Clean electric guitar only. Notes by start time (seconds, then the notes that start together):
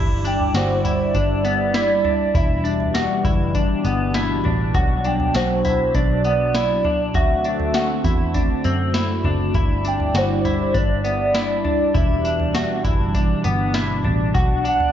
Already playing: E4
0.25 D4
0.55 F#4
0.85 E4
1.15 D4
1.45 B3
1.74 E4
2.05 D4
2.35 E4
2.64 D4
2.94 F#4
3.25 E4
3.55 D4
3.85 B3
4.15 E4
4.45 D4
4.75 F#4
5.05 D4
5.35 F#4
5.65 E4
5.95 D4
6.25 B3
6.55 E4
6.85 D4
7.15 F#4
7.45 D4
7.75 F#4
8.04 E4
8.35 D4
8.65 C4
8.94 E4
9.25 D4
9.55 E4
9.85 D4
10.15 F#4
10.45 E4
10.74 D4
11.04 B3
11.34 E4
11.64 D4
11.94 E4
12.25 D4
12.54 F#4
12.85 E4
13.15 D4
13.44 B3
13.74 E4
14.05 D4
14.34 F#4
14.65 D4